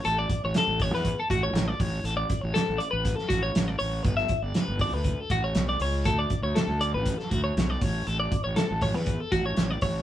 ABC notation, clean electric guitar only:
X:1
M:4/4
L:1/16
Q:1/4=120
K:D
V:1 name="Clean electric guitar"
A d2 c A2 c B2 A F c2 d c2 | A d2 c A2 d B2 A F c2 d c2 | B e2 d B2 d B2 A F c2 d c2 | A d2 c A2 d B2 A F c2 d c2 |
A d2 c A2 c B2 A F c2 d c2 |]